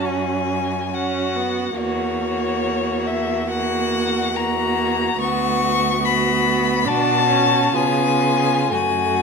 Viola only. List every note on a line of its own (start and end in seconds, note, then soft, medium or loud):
0.00 0.87 C#4 soft
0.92 1.37 C#4 soft
1.36 1.77 B3 soft
1.78 3.45 A#3 soft
3.49 4.33 A#3 soft
4.35 5.18 A#3 soft
5.19 6.00 B3 soft
6.02 6.87 B3 medium
6.86 7.28 D4 medium
7.29 7.75 C#4 soft
7.74 8.70 B3 medium
8.71 9.22 A3 soft